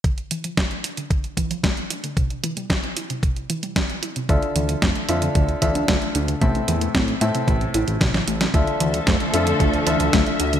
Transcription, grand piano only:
\new Staff \with { instrumentName = "Grand piano" } { \time 4/4 \key d \minor \tempo 4 = 113 r1 | r1 | <d d' f' a' e''>4. <d d' f' a' e''>4 <d d' f' a' e''>4. | <a, c' e' a' e''>4. <a, c' e' a' e''>2~ <a, c' e' a' e''>8 |
<d d' f' a' e''>4. <d d' f' a' e''>4 <d d' f' a' e''>4. | }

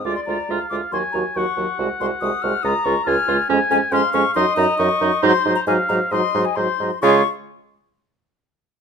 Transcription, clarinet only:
\new Staff \with { instrumentName = "Clarinet" } { \time 4/4 \key des \major \tempo 4 = 137 f'8 f'8 f'8 f'8 ges'8 ges'8 ges'8 ges'8 | ges'8 ges'8 ges'8 ges'8 f'8 f'8 f'8 f'8 | des'8 des'8 des'8 des'8 ees'8 ees'8 ees'8 ees'8 | ees'8 ees'8 ees'8 ees'8 ees'8 ees'8 ees'8 ees'8 |
f'8 r2. r8 | }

